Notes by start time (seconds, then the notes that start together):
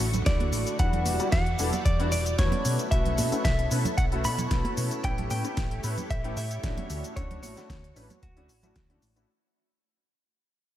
Already playing: D3 A3 F#4 C#6
0.00 A1
0.14 closed hi-hat, low conga, shaker
0.26 D2 A3 D4 E4 F#4 D5, kick, snare, closed hi-hat, shaker
0.40 closed hi-hat, high conga
0.53 A1, open hi-hat, shaker
0.67 closed hi-hat, shaker
0.79 E2 G3 B3 D4 E4 F#4 D5 F#5, kick, closed hi-hat, shaker
0.93 closed hi-hat, low conga
1.06 E1, open hi-hat, high conga, shaker
1.20 G3 B3 D4 E4 F#4, closed hi-hat, shaker
1.32 E2 F#5, kick, snare, closed hi-hat, shaker
1.46 closed hi-hat
1.59 E1 G3 B3 D4 E4 A4, open hi-hat, shaker
1.72 closed hi-hat, high conga, low conga, shaker
1.85 E2 D5, kick, closed hi-hat, shaker
1.99 G3 B3 D4 E4 F#4, closed hi-hat
2.12 E1 D5, open hi-hat, shaker
2.26 closed hi-hat, shaker
2.38 E2 A3 B3 C#4 E4 F#4 C#5, kick, snare, closed hi-hat, shaker
2.52 closed hi-hat, high conga, low conga
2.65 B2 B3 A4 C#5, open hi-hat, shaker
2.79 closed hi-hat, shaker
2.91 B1 A3 B3 C#4 E4 F#4 E5, kick, closed hi-hat, shaker
3.05 closed hi-hat, low conga
3.18 B2, open hi-hat, high conga, shaker
3.32 A3 B3 C#4 E4 F#4, muted fingered electric bass stroke, closed hi-hat, shaker
3.45 B1 E5, kick, snare, closed hi-hat, shaker
3.59 closed hi-hat
3.71 B2 A3 B3 C#4 E4 B4, open hi-hat, shaker
3.85 closed hi-hat, high conga, low conga, shaker
3.98 B1 F#5, kick, closed hi-hat, shaker
4.11 A3 B3 C#4 E4 F#4, closed hi-hat
4.24 B2 B5, open hi-hat, shaker
4.38 closed hi-hat, low conga, shaker
4.50 B1 A3 B3 C#4 E4 F#4, kick, snare, closed hi-hat, shaker
4.65 closed hi-hat, high conga
4.77 B2, open hi-hat, shaker
4.91 closed hi-hat, shaker
5.04 A1 A3 B3 C#4 E4 G4 G5, kick, closed hi-hat, shaker
5.18 closed hi-hat, low conga
5.30 A2 G5, open hi-hat, high conga, shaker
5.44 A3 B3 C#4 E4 G4, closed hi-hat, shaker
5.57 A1, kick, snare, closed hi-hat, shaker
5.71 closed hi-hat
5.83 A2 A3 B3 C#4 E4 B4, open hi-hat, shaker
5.98 closed hi-hat, high conga, low conga, shaker
6.11 A1 E5, kick, closed hi-hat, shaker
6.24 A3 B3 C#4 E4 G4, closed hi-hat
6.37 A2 E5, open hi-hat, shaker
6.51 closed hi-hat, shaker
6.63 A1 A3 C#4 D4 E4 F#4, kick, snare, closed hi-hat, shaker
6.77 closed hi-hat, high conga, low conga
6.90 D2 F#4, open hi-hat, shaker
7.04 closed hi-hat, shaker
7.16 D2 A3 C#4 D4 E4 F#4 C#5, kick, closed hi-hat, shaker
7.31 closed hi-hat, low conga
7.43 A1 C#5, open hi-hat, high conga, shaker
7.57 A3 C#4 D4 E4 F#4, snare, closed hi-hat, shaker
7.70 D2, kick, snare, closed hi-hat, shaker
7.84 closed hi-hat
7.96 A1 A3 C#4 D4 E4 B4, open hi-hat, shaker
8.10 closed hi-hat, high conga, low conga, shaker
8.23 D2 F#4, kick, closed hi-hat, shaker
8.36 A3 C#4 D4 E4 F#4, closed hi-hat
8.49 A1, open hi-hat, shaker
8.63 A3 C#4 D4 E4 F#4, closed hi-hat, low conga, shaker
8.76 D2, kick, snare, closed hi-hat, shaker
8.89 A3 C#4 D4 E4 F#4, closed hi-hat, high conga
9.02 A1, open hi-hat, shaker
9.16 A3 C#4 D4 E4 F#4, closed hi-hat, shaker